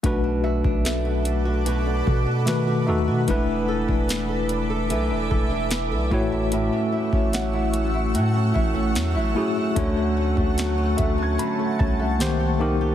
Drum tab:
HH |x---x-x-x---x---|x---x-x-x---x---|x---x-x-x---x---|x---x-x-x---x---|
SD |----o-------o---|----o-------o---|----o-------o---|----o-------o---|
BD |o--o------o-----|o--o------o---o-|---o------o-----|o--o--o---o-----|